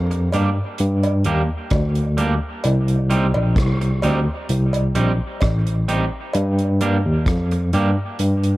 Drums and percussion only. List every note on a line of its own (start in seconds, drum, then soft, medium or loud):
0.11 closed hi-hat soft
0.32 closed hi-hat medium
0.32 cowbell medium
0.78 closed hi-hat medium
1.03 closed hi-hat soft
1.03 cowbell medium
1.24 closed hi-hat medium
1.70 kick loud
1.70 cross-stick medium
1.70 closed hi-hat medium
1.70 cowbell medium
1.95 closed hi-hat soft
2.18 closed hi-hat medium
2.64 closed hi-hat medium
2.64 cowbell medium
2.88 closed hi-hat soft
3.11 closed hi-hat medium
3.34 cowbell medium
3.56 kick medium
3.56 cross-stick medium
3.56 closed hi-hat medium
3.81 closed hi-hat soft
4.02 closed hi-hat medium
4.02 cowbell medium
4.49 closed hi-hat medium
4.73 closed hi-hat soft
4.73 cowbell medium
4.95 closed hi-hat medium
5.41 kick loud
5.41 cross-stick medium
5.41 closed hi-hat medium
5.41 cowbell medium
5.67 closed hi-hat soft
5.89 closed hi-hat medium
6.33 closed hi-hat medium
6.33 cowbell medium
6.59 closed hi-hat soft
6.81 closed hi-hat medium
7.26 kick medium
7.26 cross-stick loud
7.26 closed hi-hat medium
7.51 closed hi-hat soft
7.73 closed hi-hat medium
8.19 closed hi-hat medium
8.43 closed hi-hat soft